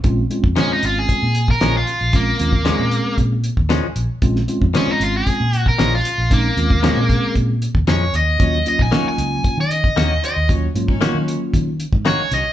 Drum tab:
HH |x-x-x-x-x-x-x-x-|x-x-x-x-x-x-x-x-|x-x-x-x-x-x-x-x-|x-x-x-x-x-x-x-x-|
SD |----o-------o---|----o-------o---|-o--o-------o---|----o-------o---|
BD |o--o----o--o----|o--o----o--o----|o--o----o--o----|o--o--o-o--o----|

HH |x-x-x-x-x-x-x-x-|x-x-x-x-x-x-x-x-|
SD |----o-------o---|----o-------o-o-|
BD |o--o----o--o----|o--o----o--o----|